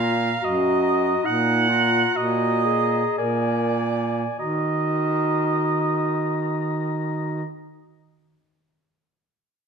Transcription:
Already playing: baritone saxophone A#2, clarinet F4, alto saxophone F5
0.03 soprano saxophone A#5
0.41 baritone saxophone F#2, clarinet F#4, alto saxophone D#5, soprano saxophone A#5
0.82 soprano saxophone A#5
1.22 baritone saxophone A#2, clarinet D#4, alto saxophone F#5, soprano saxophone A#5
1.67 clarinet F4, soprano saxophone A#5
2.14 baritone saxophone A#2, clarinet F#4, alto saxophone D#5, soprano saxophone A#5
2.64 clarinet G#4, soprano saxophone A#5
3.17 baritone saxophone A#2, clarinet A#4, alto saxophone D5, soprano saxophone G#5
3.80 soprano saxophone G#5
4.39 baritone saxophone D#3, clarinet F#4, alto saxophone D#5, soprano saxophone A#5

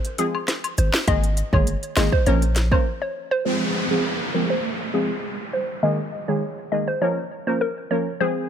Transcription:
0.05 closed hi-hat
0.18 synth stab F3 G#3 C4 G#4, synth pluck G#4, closed hi-hat, cabasa
0.35 high woodblock
0.48 cross-stick, snare, closed hi-hat
0.64 closed hi-hat, high woodblock
0.78 808-style bass G#1, synth pluck C5, closed hi-hat, cabasa
0.93 cross-stick, snare
1.07 808-style bass G#1, synth stab D#3 G#3 A#3 G#4, synth pluck D#5, kick, closed hi-hat, high woodblock
1.24 closed hi-hat
1.37 closed hi-hat, cabasa
1.53 808-style bass G1, synth stab D#3 G#3 A#3 G#4, synth pluck C#5, kick, high woodblock
1.67 closed hi-hat
1.83 closed hi-hat
1.96 808-style bass G#1, synth stab D#3 G#3 A#3 G#4, synth pluck D#5, cross-stick, snare, closed hi-hat, cabasa, high woodblock
2.12 synth pluck C5, kick
2.26 808-style bass A#1, synth stab F3 A#3 C#4 A#4, synth pluck C#5, closed hi-hat
2.42 closed hi-hat
2.56 snare, closed hi-hat, cabasa
2.72 synth stab F3 A#3 C#4 A#4, synth pluck C5, kick, high woodblock
3.02 synth pluck C#5
3.31 synth pluck C5
3.45 synth stab F3 G#3 C4 G#4, synth pluck C5, downlifter
3.91 synth stab F3 G#3 C4 G#4, synth pluck G#4
4.34 synth stab F3 G#3 C4 G#4, synth pluck A#4
4.50 synth pluck C5
4.94 synth stab F3 G#3 C4 G#4, synth pluck G#4
5.53 synth pluck C5
5.83 synth stab D#3 G#3 A#3 G#4, synth pluck D#5
6.28 synth stab D#3 G#3 A#3 G#4, synth pluck C#5
6.72 synth stab D#3 G#3 A#3 G#4, synth pluck D#5
6.88 synth pluck C5
7.01 synth stab F3 A#3 C#4 A#4, synth pluck C#5
7.47 synth stab F3 A#3 C#4 A#4, synth pluck C5
7.61 synth pluck A#4
7.90 synth stab F3 A#3 C#4 A#4, synth pluck C#5
8.20 synth stab F3 G#3 C4 G#4, synth pluck C5

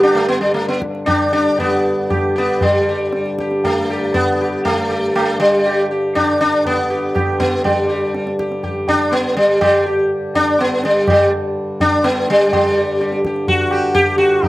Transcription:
Already playing: harmonium G2 D3
0.03 sitar D4, tabla na
0.15 sitar A3
0.28 sitar B3
0.41 sitar G3
0.54 sitar A3, tabla te
0.68 sitar B3, tabla te
0.82 tabla ke
0.95 tabla te
1.06 sitar D4, tabla na, tabla ge
1.32 sitar D4 G4
1.58 sitar B3 G4, tabla tin, tabla ge
2.10 sitar G4, tabla na, tabla ge
2.36 sitar B3 G4
2.61 harmonium G2 D3, sitar G3, tabla tin, tabla ge
2.89 sitar G4
3.13 tabla te
3.26 tabla te
3.39 sitar G4, tabla ke
3.51 tabla te
3.64 sitar A3, tabla tin, tabla ge
3.90 sitar G4
4.14 sitar B3, tabla tin, tabla ge
4.41 sitar G4
4.65 sitar A3, tabla tin, tabla ge
4.90 sitar G4
5.15 sitar A3, tabla na
5.40 sitar G3
5.66 sitar G4, tabla na
5.91 sitar G4
6.15 sitar D4, tabla na, tabla ge
6.41 sitar D4
6.66 sitar B3, tabla tin, tabla ge
6.90 sitar G4
7.15 sitar G4, tabla na, tabla ge
7.40 sitar B3, tabla ge
7.64 sitar G3, tabla tin, tabla ge
7.89 sitar G4
8.14 tabla te
8.27 tabla te
8.39 sitar G4, tabla ke
8.52 tabla te
8.63 sitar G4, tabla tin, tabla ge
8.88 sitar D4, tabla tin, tabla ge
9.12 sitar B3, tabla te
9.37 sitar G3, tabla te
9.61 sitar G3, tabla na, tabla ge
9.86 sitar G4
10.35 sitar D4, tabla tin, tabla ge
10.59 sitar B3, tabla te
10.84 sitar G3, tabla te
11.08 sitar G3, tabla na, tabla ge
11.80 sitar D4, tabla tin, tabla ge
12.04 sitar B3, tabla te
12.29 sitar G3, tabla te
12.52 harmonium G2 D3, sitar G3, tabla tin, tabla ge
12.77 sitar G4
13.01 sitar G4, tabla te
13.12 tabla te
13.25 sitar G4, tabla ke
13.36 tabla te
13.48 sitar F#4, tabla tin, tabla ge
13.71 sitar G4, tabla na
13.95 sitar G4, tabla tin, tabla ge
14.18 sitar F#4, tabla na
14.43 sitar G4, tabla tin, tabla ge

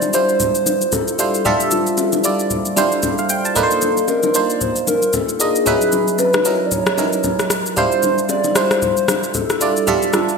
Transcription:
Already playing: fm electric piano G3 D4 E4 F4 C5, soft synth lead D5
0.02 low bongo, shaker
0.13 fm electric piano G3 D4 E4 F4 C5, soft synth lead C5, shaker
0.29 shaker
0.40 soft synth lead C5, low conga, shaker
0.55 shaker
0.66 low bongo, shaker
0.81 shaker
0.92 soft synth lead A4, high bongo, low conga, shaker
1.08 shaker
1.19 fm electric piano G3 D4 E4 F4 C5, shaker
1.34 shaker
1.45 fm electric piano G3 D4 F4 A4 E5, soft synth lead G4, low conga, shaker
1.60 shaker
1.71 soft synth lead F4, low bongo, shaker
1.87 shaker
1.97 high bongo, shaker
2.12 low bongo, shaker
2.24 fm electric piano G3 D4 E4 F4 D5, shaker
2.39 shaker
2.50 low conga, shaker
2.65 shaker
2.76 fm electric piano G3 D4 E4 F4 C5, low bongo, shaker
2.92 shaker
3.03 high bongo, low conga, shaker
3.18 fm electric piano F5, shaker
3.29 fm electric piano G5, shaker
3.45 fm electric piano A5, shaker
3.55 fm electric piano A#3 D4 D#4 F4 B4, soft synth lead A4, low conga, shaker
3.63 fm electric piano C5
3.71 shaker
3.82 low bongo, shaker
3.97 shaker
4.08 soft synth lead A#4, high bongo, shaker
4.23 low bongo, shaker
4.34 fm electric piano A#3 D4 D#4 F4 C5, soft synth lead D5, shaker
4.50 shaker
4.61 soft synth lead C5, low conga, shaker
4.76 shaker
4.87 soft synth lead A#4, low bongo, shaker
5.02 shaker
5.13 soft synth lead A4, high bongo, low conga, shaker
5.29 shaker
5.40 fm electric piano A#3 D4 D#4 F4 D#5, soft synth lead G#4, shaker
5.55 shaker
5.66 fm electric piano F#3 C#4 D#4 E4 B4, low conga, shaker
5.81 shaker
5.92 low bongo, shaker
6.08 shaker
6.18 soft synth lead B4, high bongo, shaker
6.33 cross-stick, low bongo, shaker
6.45 fm electric piano F#3 C#4 D#4 E4 A#4, shaker
6.66 soft synth lead D5
6.71 soft synth lead C#5, low conga, shaker
6.86 cross-stick, shaker
6.97 fm electric piano F#3 C#4 D#4 E4 A#4, low bongo, shaker
7.13 shaker
7.23 high bongo, low conga, shaker
7.39 cross-stick, shaker
7.50 cross-stick, shaker
7.66 shaker
7.76 fm electric piano G3 D4 E4 F4 C5, soft synth lead C5, low conga, shaker
7.92 shaker
8.03 low bongo, shaker
8.18 shaker
8.29 soft synth lead D5, high bongo, shaker
8.44 low bongo, shaker
8.55 fm electric piano G3 D4 E4 F4 C5, soft synth lead C5, cross-stick, shaker
8.71 cross-stick, shaker
8.82 soft synth lead C5, low conga, shaker
8.97 shaker
9.08 cross-stick, low bongo, shaker
9.23 shaker
9.34 soft synth lead A4, high bongo, low conga, shaker
9.50 cross-stick, shaker
9.61 fm electric piano G3 D4 E4 F4 D5, shaker
9.76 shaker
9.87 fm electric piano G3 D4 F4 A4 E5, soft synth lead G4, low conga, shaker
10.02 shaker
10.13 soft synth lead F4, cross-stick, low bongo, shaker
10.29 shaker

